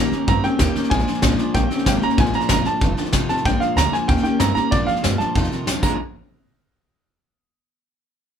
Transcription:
Already playing: A#2 D#3 A#3 C#4 A#5
0.00 G4
0.11 D#3 A#3 C#4 G4, muted upright bass stroke, snare
0.27 G2 D#3 A#3 C4 C#4 G4 A#5, kick, snare
0.43 D#3 A#3 C4 C#4 G4 G5, muted upright bass stroke, snare
0.59 D#2 D#3 A#3 C#4 G4, kick, snare, hi-hat pedal
0.75 D#3 A#3 C#4 G4, muted upright bass stroke, snare
0.84 snare
0.90 A#1 A#2 F3 G#3 D4 F4 G#5, kick, snare
0.99 snare
1.07 A#2 F3 G#3 D4 F4, snare
1.15 snare
1.22 C2 A#2 F3 G#3 D4 F4, kick, snare, hi-hat pedal
1.38 A#2 F3 G#3 D4 F4, muted upright bass stroke, snare
1.54 A#1 D#3 A#3 C#4 G4 G5, kick, snare
1.70 D#3 C4 C#4 G4, snare
1.74 A#3
1.78 snare
1.85 G#1 D#3 A#3 C#4 G4 G5, kick, snare, hi-hat pedal
2.01 D#3 A#3 C#4 G4 A#5, muted upright bass stroke, snare
2.10 snare
2.18 A#1 A#2 F3 G#3 D4 F4 G#5, kick, snare
2.26 snare
2.33 A#2 F3 G#3 D4 F4 A#5, muted upright bass stroke, snare
2.41 snare
2.49 G1 A#2 F3 G#3 D4 F4 A#5, kick, snare, hi-hat pedal
2.65 A#2 F3 G#3 D4 F4 A5, muted upright bass stroke, snare
2.81 F1 F2 C3 D#3 A3 D#4 F4, kick, snare
2.97 F2 D3 D#3 A3 D#4 F4, muted upright bass stroke, snare
3.05 snare
3.13 A1 F2 C3 D#3 A3 D#4 F4, kick, snare, hi-hat pedal
3.29 F2 C3 D#3 A3 D#4 F4 A5, muted upright bass stroke, snare
3.37 snare
3.45 A#1 A#2 F3 G#3 D4 F4 G5, kick, snare
3.60 A#2 F3 G#3 D4 F4 F5, snare
3.76 D2 A#2 F3 G3 G#3 D4 A#5, snare, hi-hat pedal
3.80 F4
3.92 A#2 F3 G#3 D4 F4 G#5, snare
4.08 D#2 D#3 A#3 C#4 G4 G5, kick, snare
4.17 snare
4.23 D#3 A#3 C#4 G4 G5, muted upright bass stroke, snare
4.28 A#3
4.39 G2 D#3 A#3 C4 C#4 A#5, snare, hi-hat pedal
4.44 G4
4.55 D#3 A#3 C#4 G4 A#5, muted upright bass stroke, snare
4.59 A#3
4.71 A#2 F3 G#3 D4 F4 D5, kick, snare
4.87 A#2 F3 D4 F4 F5, muted upright bass stroke, snare
4.91 G#3
4.96 snare
5.02 G2 A#2 F3 G3 G#3 D4, snare, hi-hat pedal
5.07 F4
5.18 A#2 F3 D4 F4 A5, muted upright bass stroke, snare
5.23 G#3
5.34 F2 C3 D#3 A3 D#4 F4, kick, snare
5.44 snare
5.51 F2 C3 D#3 A3 D#4 F4, muted upright bass stroke, snare
5.66 C2 F2 D3 D#3 A3 D#4 F4, snare, hi-hat pedal
5.82 A#1 A#2 F3 G#3 D4 F4 G#4 A#5, kick, crash

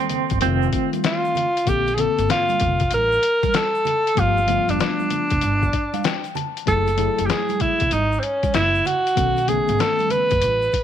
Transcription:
Already playing: D#3 A#3 C4 A4
0.09 closed hi-hat, low conga, shaker
0.29 G1, kick, closed hi-hat, shaker
0.40 F1 D#3 G3 C4 F4, closed hi-hat, high conga, shaker
0.48 A3
0.62 shaker
0.73 kick, closed hi-hat, shaker
0.93 closed hi-hat, high conga, shaker
1.04 F4, snare, closed hi-hat, shaker
1.25 shaker
1.35 closed hi-hat, low conga, shaker
1.57 closed hi-hat, shaker
1.65 A#1 D3 A#3 C4 G4 A4, kick, closed hi-hat, shaker
1.87 closed hi-hat, shaker
1.95 D3 A#3 C4 G#4, closed hi-hat
1.99 A4, low conga, shaker
2.18 G1, closed hi-hat, shaker
2.29 F4, snare, closed hi-hat, shaker
2.49 closed hi-hat, high conga, shaker
2.60 F1, kick, closed hi-hat, low conga, shaker
2.79 kick, closed hi-hat, shaker
2.91 A1 A#4, closed hi-hat, high conga, shaker
3.12 shaker
3.22 closed hi-hat, shaker
3.43 kick, closed hi-hat, high conga, shaker
3.53 A4, snare, closed hi-hat, shaker
3.75 shaker
3.85 closed hi-hat, low conga, shaker
4.07 closed hi-hat, shaker
4.15 G1 F3 A3 B3 G4, kick, closed hi-hat, shaker
4.19 F4
4.37 shaker
4.47 F3 A3 B3 F4, closed hi-hat, high conga, low conga, shaker
4.68 F1 D4, closed hi-hat, high conga, shaker
4.79 D4, snare, closed hi-hat, shaker
4.99 high conga, shaker
5.10 closed hi-hat, low conga, shaker
5.30 E1, kick, closed hi-hat, shaker
5.41 G1, closed hi-hat, high conga, shaker
5.62 kick, shaker
5.73 D5, kick, closed hi-hat, shaker
5.94 F5, closed hi-hat, high conga, shaker
6.04 G5, snare, closed hi-hat, shaker
6.24 closed hi-hat, shaker
6.35 A5, closed hi-hat, low conga, shaker
6.57 closed hi-hat, shaker
6.66 F#1 F#3 A3 E4 G#4 A4, kick, closed hi-hat, shaker
6.87 closed hi-hat, shaker
6.96 F#3 A3 E4 G#4, closed hi-hat, low conga, shaker
7.18 F#1, closed hi-hat, shaker
7.26 G4 G#4, snare, closed hi-hat, shaker
7.49 closed hi-hat, high conga, shaker
7.60 E4, kick, closed hi-hat, low conga, shaker
7.79 E1, kick, closed hi-hat, shaker
7.91 G#1 D#4, closed hi-hat, high conga, shaker
8.12 shaker
8.19 C4, closed hi-hat, shaker
8.24 C#4
8.43 kick, closed hi-hat, high conga, shaker
8.54 F#1 E4, snare, closed hi-hat, shaker
8.75 shaker
8.85 F#4, closed hi-hat, low conga, shaker
9.07 closed hi-hat, shaker
9.16 B1 D#3 B3 C#4 A4, kick, closed hi-hat, shaker
9.37 closed hi-hat, shaker
9.47 D#3 A3 B3 C#4 G#4, closed hi-hat, low conga, shaker
9.68 G#1, closed hi-hat, shaker
9.79 A4, snare, closed hi-hat, shaker
9.99 closed hi-hat, high conga, shaker
10.10 B4, closed hi-hat, low conga, shaker
10.30 F#1, kick, closed hi-hat, shaker
10.42 A1, closed hi-hat, high conga, shaker
10.62 shaker
10.72 kick, closed hi-hat, shaker

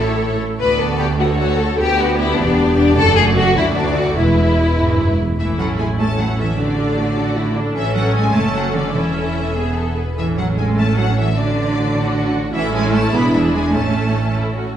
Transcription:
Already playing: A1 A2 A4
0.00 A3 E4 C#5
0.60 D2 B3 F#4 B4 D5
0.80 A4
0.99 G4
1.20 A3 F#4 A4 C#5
1.39 F#4
1.59 A4
1.79 D2 B3 G4 B4
1.99 F#4
2.18 E4
2.37 E1 E2 D4 G4 D5
2.76 D4
2.96 F#1 F#2 A3 F#4 A4
3.16 G#4
3.36 F#4
3.57 D2 A3 E4 F#4 D5
3.76 D4
3.96 F#4
4.17 E1 E2 G#3 E4 B4
4.79 G#2
4.99 F#2
5.20 E2
5.39 A1 E3 A3 E4 E5
5.58 F#3 C#4 A4 F#5
5.79 G#3 A3 E4 G#5
5.99 A3 C#4 A4 A5
6.19 F#3 A3 E4 F#5
6.39 E3 C#4 A4 E5
6.58 D3 A3 D4 F#4 D5
6.78 D4 A4
6.97 A3 F#4
7.16 D4 F#4 A4
7.36 A3 E4 F#4
7.55 D4 A4
7.75 A1 E3 C#4 A4 E5
7.95 F#3 F#5
8.14 G#3 G#5
8.34 F#1 A3 C#4 A4 A5
8.55 F#3 F#5
8.75 D3 D5
8.94 E1 E3 C#4 E4 A4 E5
9.55 B3 G#4
9.76 A4
9.97 B4
10.17 A1 E3 C#4 A4 E5
10.37 F#3 F#5
10.57 G#3 G#5
10.76 A3 C#4 A5
10.97 F#3 F#5
11.17 E3 E5
11.36 D3 D4 F#4 D5
11.96 F#4
12.54 A1 E3 C#4 E4 A4 E5
12.73 G#3 G#5
12.93 A3 A5
13.13 E1 B3 D4 G#4 B5
13.33 E3 E5
13.53 G#3 G#5
13.74 A1 A3 C#4 A4 A5
14.35 E4
14.55 F#4

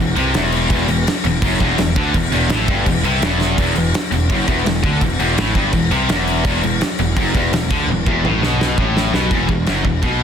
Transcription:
Already playing: E1
0.00 E2
0.16 C2 C3, crash
0.34 E1 E2, snare, crash
0.52 crash
0.70 E1 E2, kick, crash
0.88 E1 E2, crash
1.07 snare, crash
1.24 E1 E2, crash
1.42 F#1 F#2, kick, crash
1.60 E1 E2, kick, crash
1.77 E1 E2, snare, crash
1.96 D2 D3, kick, crash
2.14 E1 E2, kick, crash
2.31 E1 E2, crash
2.49 A1 A2, snare, crash
2.68 G1 G2, kick, crash
2.86 E1 E2, kick, crash
3.04 C2 C3, crash
3.21 E1 E2, snare, crash
3.41 snare
3.58 E1 E2, kick, crash
3.75 E1 E2, crash
3.94 snare, crash
4.11 E1 E2, crash
4.29 F#1 F#2, kick, crash
4.48 E1 E2, kick, crash
4.65 E1 E2, snare, crash
4.83 D2 D3, kick, crash
5.01 E1 E2, kick, crash
5.19 E1 E2, crash
5.37 A1 A2, snare, crash
5.55 G1 G2, kick, crash
5.73 E1 E2, kick, crash
5.91 C2 C3, crash
6.09 E1 E2, snare, crash
6.27 crash
6.44 E1 E2, kick, crash
6.63 E1 E2, crash
6.81 snare, crash
6.99 E1 E2, crash
7.17 F#1 F#2, kick, crash
7.34 E1 E2, kick, crash
7.53 E1 E2, snare, crash
7.71 D2 D3, kick, crash
7.87 E1 E2, high tom
8.06 E1 E2, kick
8.24 A1 A2, mid tom
8.42 B1 B2, snare
8.61 snare
8.78 A1 A2, kick
8.97 snare
9.13 B1 B2, snare
9.31 E1 E2, kick, crash
9.48 E1 E2, kick
9.66 F#1 F#2, snare, crash
9.85 E1 E2, kick
10.03 B1 B2, kick, crash

